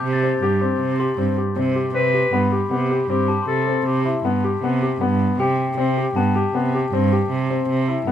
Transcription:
0.00 0.40 C3 medium
0.00 0.19 G4 medium
0.00 1.53 G4 medium
0.00 0.19 A5 medium
0.00 0.21 D6 soft
0.00 0.32 G6 soft
0.13 0.44 A6 soft
0.23 0.40 C4 medium
0.42 0.78 G2 medium
0.42 0.59 G4 medium
0.61 0.95 C4 medium
0.80 1.16 C3 medium
0.99 1.16 G4 medium
0.99 2.10 C6 soft
1.18 1.37 G2 medium
1.18 1.35 C4 medium
1.37 1.54 G4 medium
1.56 1.93 C3 medium
1.56 1.73 C4 medium
1.75 1.93 G4 medium
1.94 2.31 C3 medium
1.94 2.12 C4 medium
1.94 2.48 B4 medium
2.14 2.31 G4 medium
2.33 2.69 G2 medium
2.33 2.50 B3 medium
2.33 3.48 B5 medium
2.52 2.69 G4 medium
2.71 3.08 C3 medium
2.71 2.88 B3 medium
2.71 3.07 G4 medium
2.91 3.08 G4 medium
3.09 3.46 G2 medium
3.09 3.27 C4 medium
3.09 3.45 G4 medium
3.28 3.63 G4 medium
3.28 4.43 A5 medium
3.43 4.55 C6 soft
3.47 3.84 C3 medium
3.47 3.83 A4 medium
3.67 4.01 C4 medium
3.86 4.22 C3 medium
3.86 4.22 G4 medium
4.05 4.22 E4 medium
4.24 4.61 G2 medium
4.24 4.42 B3 medium
4.44 4.61 G4 medium
4.62 4.99 C3 medium
4.62 4.80 B3 medium
4.82 4.99 G4 medium
5.01 5.37 G2 medium
5.01 5.35 B3 medium
5.39 5.76 C3 medium
5.39 5.73 G4 medium
5.39 6.54 G5 medium
5.78 6.14 C3 medium
5.78 5.95 C4 medium
5.97 6.14 G4 medium
6.16 6.52 G2 medium
6.16 6.33 B3 medium
6.16 7.30 A5 medium
6.35 6.52 G4 medium
6.54 6.90 C3 medium
6.54 6.71 B3 medium
6.74 6.91 G4 medium
6.93 7.29 G2 medium
6.93 7.10 C4 medium
7.12 7.46 G4 medium
7.31 7.67 C3 medium
7.50 7.84 C4 medium
7.69 8.05 C3 medium
7.88 8.05 E4 medium
8.07 8.12 G2 medium
8.07 8.12 B3 medium

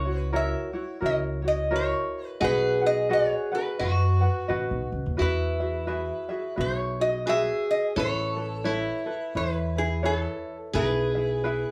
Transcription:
0.00 0.54 C#2 medium
0.00 2.49 F#4 medium
0.00 0.20 C#5 medium
0.05 0.32 E4 soft
0.05 0.32 F#4 soft
0.05 0.32 C#5 soft
0.20 0.36 B4 medium
0.33 0.73 E4 medium
0.33 0.74 F#4 medium
0.33 0.73 A#4 medium
0.33 0.72 C#5 medium
0.33 1.00 E5 medium
0.73 1.01 E4 medium
0.73 1.00 F#4 soft
0.73 1.00 C#5 medium
1.01 1.92 C#2 medium
1.01 1.43 E4 medium
1.01 1.43 F#4 medium
1.01 1.42 A#4 medium
1.01 1.41 C#5 medium
1.06 1.17 D#5 medium
1.42 1.70 E4 soft
1.42 1.70 F#4 soft
1.42 1.70 C#5 medium
1.48 1.74 D#5 medium
1.71 2.41 E4 medium
1.71 2.40 F#4 medium
1.71 2.40 A#4 medium
1.71 2.41 C#5 medium
1.76 2.28 C#5 medium
2.28 2.44 B4 medium
2.40 3.31 B1 medium
2.40 2.82 F#4 medium
2.40 3.79 G#4 loud
2.40 2.81 B4 medium
2.40 2.82 D#5 medium
2.40 2.80 F#5 medium
2.44 2.86 B4 medium
2.81 3.09 F#4 soft
2.81 3.09 B4 soft
2.81 3.10 F#5 soft
2.86 3.13 D#5 medium
3.09 3.52 F#4 medium
3.09 3.51 B4 medium
3.09 3.51 D#5 medium
3.09 3.50 F#5 medium
3.13 3.54 C#5 medium
3.52 3.78 F#4 soft
3.52 3.79 B4 soft
3.52 4.46 B4 medium
3.52 3.79 F#5 medium
3.79 4.25 F#2 medium
3.79 4.21 F#4 medium
3.79 4.87 F#4 medium
3.79 4.21 B4 medium
3.79 4.21 D#5 medium
3.79 4.20 F#5 medium
4.21 4.47 F#4 soft
4.21 4.48 B4 soft
4.21 4.49 F#5 soft
4.48 4.68 A1 medium
4.48 5.17 F#4 medium
4.48 5.17 B4 medium
4.48 5.16 D#5 medium
4.48 5.18 F#5 medium
4.71 4.89 B1 medium
4.92 5.04 C#2 medium
5.06 5.18 D#2 medium
5.17 6.10 E2 medium
5.17 7.33 E4 medium
5.17 5.60 F#4 medium
5.17 5.60 G#4 medium
5.17 5.59 B4 medium
5.17 5.59 E5 medium
5.22 6.60 B4 medium
5.60 5.86 F#4 soft
5.60 5.87 G#4 soft
5.60 5.87 E5 soft
5.87 6.29 F#4 medium
5.87 6.29 G#4 medium
5.87 6.29 B4 medium
5.87 6.28 E5 medium
6.29 6.56 F#4 soft
6.29 6.56 G#4 medium
6.29 6.57 E5 medium
6.56 7.48 B1 medium
6.56 6.99 F#4 medium
6.56 6.99 G#4 medium
6.56 6.98 B4 medium
6.56 6.99 E5 medium
6.61 7.02 C#5 medium
7.00 7.25 F#4 soft
7.00 7.26 G#4 soft
7.00 7.26 D#5 medium
7.26 7.96 F#4 medium
7.26 7.92 G#4 loud
7.26 7.96 G#4 medium
7.26 7.97 B4 medium
7.26 7.70 E5 medium
7.71 7.98 D#5 medium
7.96 8.87 A1 medium
7.96 8.37 E4 medium
7.96 8.68 A4 loud
7.96 8.35 A4 medium
7.96 8.36 B4 medium
7.96 8.36 C#5 medium
7.96 9.37 C#5 medium
8.36 8.63 E4 soft
8.36 8.64 A4 soft
8.36 8.64 B4 soft
8.64 9.07 E4 medium
8.64 10.80 E4 medium
8.64 9.05 A4 medium
8.64 9.05 B4 medium
8.64 9.06 C#5 medium
9.06 9.34 E4 soft
9.06 9.34 A4 medium
9.06 9.35 B4 medium
9.35 10.25 E2 medium
9.35 9.77 E4 medium
9.35 9.78 A4 medium
9.35 9.76 B4 medium
9.35 9.79 B4 medium
9.35 9.77 C#5 soft
9.77 10.03 E4 soft
9.77 10.05 G#4 medium
9.77 10.03 B4 soft
10.03 10.73 E4 medium
10.03 10.74 A4 medium
10.03 10.57 A4 medium
10.03 10.74 B4 medium
10.03 10.73 C#5 medium
10.73 11.64 B1 medium
10.73 11.15 E4 medium
10.73 11.71 G#4 loud
10.73 11.15 G#4 medium
10.73 11.16 B4 medium
10.73 11.71 B4 medium
10.73 11.14 E5 medium
11.15 11.43 E4 soft
11.15 11.43 G#4 soft
11.15 11.43 E5 medium
11.44 11.71 E4 medium
11.44 11.71 G#4 medium
11.44 11.71 B4 medium
11.44 11.71 E5 medium

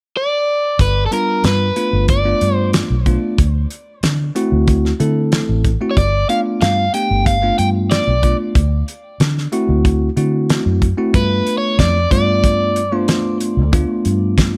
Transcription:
0.17 0.81 D5 medium
0.79 1.06 G1 medium
0.79 1.04 B4 medium
0.79 kick medium
0.79 closed hi-hat medium
1.06 1.12 A4 soft
1.11 1.67 G3 medium
1.11 1.67 B3 medium
1.11 1.68 D4 medium
1.11 1.68 F4 medium
1.11 1.45 A#4 medium
1.11 closed hi-hat soft
1.44 1.70 G2 medium
1.44 2.05 B4 medium
1.44 snare medium
1.44 closed hi-hat medium
1.76 2.18 A3 medium
1.76 2.18 B3 soft
1.76 2.18 D4 soft
1.76 2.19 F4 medium
1.76 closed hi-hat medium
1.93 2.32 G1 medium
2.08 2.56 D5 medium
2.08 kick medium
2.08 closed hi-hat medium
2.25 2.95 A3 medium
2.25 2.95 B3 medium
2.25 2.95 D4 medium
2.25 2.95 F4 medium
2.41 2.81 G2 medium
2.41 closed hi-hat medium
2.56 2.70 C5 medium
2.73 snare medium
2.73 closed hi-hat medium
2.90 3.17 B1 medium
3.06 3.38 A3 medium
3.06 3.38 B3 medium
3.06 3.38 D4 medium
3.06 3.39 F4 medium
3.06 kick medium
3.06 closed hi-hat soft
3.38 3.65 D2 medium
3.38 kick medium
3.38 closed hi-hat medium
3.70 closed hi-hat soft
4.03 4.29 D3 medium
4.03 snare medium
4.03 closed hi-hat medium
4.35 4.91 A3 medium
4.35 4.91 C4 medium
4.35 4.91 E4 medium
4.35 4.91 F#4 medium
4.35 closed hi-hat medium
4.52 4.91 D2 medium
4.67 kick medium
4.67 closed hi-hat medium
4.85 snare soft
5.00 5.40 D3 medium
5.00 5.69 A3 medium
5.00 5.70 C4 medium
5.00 5.70 E4 medium
5.00 5.70 A4 medium
5.00 closed hi-hat medium
5.32 snare medium
5.32 closed hi-hat medium
5.49 5.75 A1 medium
5.65 kick medium
5.65 closed hi-hat soft
5.81 5.97 A3 medium
5.81 5.97 C4 medium
5.81 5.97 E4 medium
5.81 5.97 F#4 medium
5.91 5.97 C#5 medium
5.97 6.23 G1 medium
5.97 6.27 D5 medium
5.97 kick medium
5.97 closed hi-hat medium
6.29 6.85 A3 medium
6.29 6.85 B3 medium
6.29 6.85 D4 medium
6.29 6.85 F4 medium
6.29 6.38 F5 medium
6.29 closed hi-hat soft
6.61 6.88 G2 medium
6.61 6.94 F5 medium
6.61 snare medium
6.61 closed hi-hat medium
6.94 7.36 A3 medium
6.94 7.36 B3 medium
6.94 7.36 D4 soft
6.94 7.36 G4 medium
6.94 7.26 G5 medium
6.94 closed hi-hat medium
7.11 7.50 G1 medium
7.26 7.58 F5 medium
7.26 kick medium
7.26 closed hi-hat medium
7.42 8.12 A3 medium
7.42 8.12 B3 medium
7.42 8.12 D4 medium
7.42 8.12 F4 medium
7.58 7.99 G2 medium
7.58 7.67 G5 medium
7.58 closed hi-hat medium
7.91 8.36 D5 medium
7.91 snare medium
7.91 closed hi-hat medium
8.07 8.34 B1 medium
8.23 8.55 A3 medium
8.23 8.55 B3 soft
8.23 8.55 D4 soft
8.23 8.56 F4 medium
8.23 kick medium
8.23 closed hi-hat medium
8.55 8.82 D2 medium
8.55 kick medium
8.55 closed hi-hat medium
8.88 closed hi-hat soft
9.20 9.46 D3 medium
9.20 snare medium
9.20 closed hi-hat medium
9.38 snare soft
9.52 10.08 A3 medium
9.52 10.08 C4 medium
9.52 10.08 E4 medium
9.52 10.09 F#4 loud
9.52 closed hi-hat medium
9.69 10.08 D2 medium
9.85 kick medium
9.85 closed hi-hat medium
10.17 10.57 D3 medium
10.17 10.87 A3 medium
10.17 10.87 C4 medium
10.17 10.87 E4 medium
10.17 10.87 F#4 medium
10.17 closed hi-hat soft
10.50 snare medium
10.50 closed hi-hat medium
10.66 10.92 F#2 medium
10.82 kick medium
10.82 closed hi-hat soft
10.97 11.12 A3 medium
10.97 11.14 C4 medium
10.97 11.14 E4 medium
10.97 11.14 F#4 medium
11.13 11.41 G2 medium
11.13 11.97 A3 medium
11.13 11.98 B3 soft
11.13 11.98 D4 medium
11.13 11.98 F4 medium
11.13 11.58 B4 medium
11.13 kick medium
11.13 closed hi-hat medium
11.47 closed hi-hat medium
11.58 11.79 C#5 medium
11.79 12.05 F2 medium
11.79 12.09 D5 medium
11.79 kick medium
11.79 snare medium
11.79 closed hi-hat medium
12.11 13.59 G2 medium
12.11 12.80 A3 medium
12.11 12.80 B3 medium
12.11 12.81 D4 medium
12.11 12.81 F4 medium
12.11 12.97 D5 medium
12.11 kick medium
12.11 closed hi-hat medium
12.44 kick medium
12.44 closed hi-hat medium
12.76 closed hi-hat medium
12.92 13.62 A3 medium
12.92 13.62 B3 medium
12.92 13.62 D4 medium
12.92 13.62 F4 medium
12.97 13.37 C5 medium
13.08 snare medium
13.08 closed hi-hat medium
13.40 closed hi-hat medium
13.57 13.83 D2 medium
13.72 14.56 A3 medium
13.72 14.56 B3 medium
13.72 14.57 D4 medium
13.72 14.57 F4 medium
13.72 kick loud
13.72 closed hi-hat medium
14.05 14.57 G2 medium
14.05 closed hi-hat medium
14.38 kick medium
14.38 snare medium
14.38 closed hi-hat medium

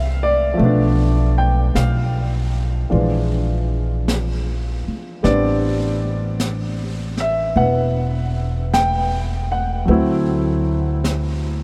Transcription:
0.00 0.55 C2 medium
0.00 0.60 E3 soft
0.00 0.58 G3 soft
0.00 0.56 A3 soft
0.00 0.58 C4 soft
0.00 0.59 D4 soft
0.00 0.25 E5 medium
0.00 0.61 F5 medium
0.00 0.61 G5 medium
0.23 1.35 D5 medium
0.54 2.88 F3 medium
0.54 2.90 A3 soft
0.54 brush sweep soft
0.59 1.71 B1 medium
0.59 2.92 B3 medium
0.65 2.89 D4 medium
1.38 1.76 G5 medium
1.75 2.87 B1 medium
1.75 4.04 F5 medium
1.75 brush sweep soft
1.75 snare soft
1.75 hi-hat pedal soft
2.90 4.84 A#1 medium
2.90 5.24 E3 soft
2.90 5.24 F3 soft
2.90 5.24 G#3 soft
2.90 5.24 D4 soft
2.90 brush sweep soft
4.08 brush sweep soft
4.08 snare soft
4.08 hi-hat pedal soft
4.88 muted upright bass stroke soft
5.23 7.53 A1 medium
5.23 9.88 G3 soft
5.23 7.54 B3 soft
5.23 9.88 C4 soft
5.23 9.89 D4 medium
5.23 6.36 D5 medium
5.23 brush sweep soft
5.23 snare soft
6.40 brush sweep soft
6.40 snare soft
6.40 hi-hat pedal medium
7.17 7.54 E5 medium
7.17 snare soft
7.56 9.84 E1 medium
7.56 9.88 B3 soft
7.56 8.76 F#5 medium
7.56 brush sweep soft
8.74 9.48 G5 medium
8.74 brush sweep soft
8.74 snare soft
8.74 hi-hat pedal soft
9.52 11.63 F#5 medium
9.85 11.63 D2 medium
9.85 11.63 F#3 medium
9.85 11.63 A3 soft
9.85 11.63 C4 soft
9.85 brush sweep soft
9.91 11.63 E4 medium
11.04 brush sweep soft
11.04 snare soft
11.04 hi-hat pedal soft

